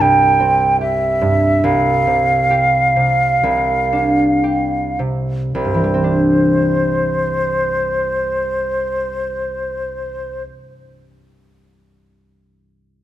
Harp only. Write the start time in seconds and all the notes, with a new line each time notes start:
Already playing: G2 C4 G4
0.00 C2
0.40 C4
0.81 G4
1.21 G2
1.64 C2
2.07 C3
2.51 G4
2.96 C3
3.43 C2
3.93 D4
4.44 G4
4.99 C3
5.55 C2
5.65 G2
5.74 E3
5.84 G3
5.94 C4
6.04 D4